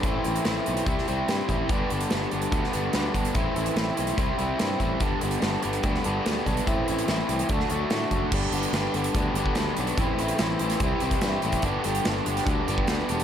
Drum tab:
CC |----------------|----------------|----------------|----------------|
HH |x-xxx-xxx-x-x-x-|x-xxx-xxx-x-x-xx|x-xxx-xxx-x-x-x-|x-xxx-xxx-x-x-xx|
SD |----o----o--o---|----o----o--o---|----o-------o---|----o----o--o---|
BD |o-------o-----o-|o-------o-----o-|o-------o-----o-|o-------o-----o-|

CC |----------------|x---------------|----------------|----------------|
HH |x-xxx-xxx-x-x-x-|--xxx-xxx-x-x-xx|x-xxx-xxx-xxx-xx|x-xxx-xxx-x-x-xx|
SD |----o----o--o---|----o-------o---|----o--o----o---|----o--o----o---|
BD |o-------o-----o-|o-------o--o----|o-------o--o---o|o-------o--o----|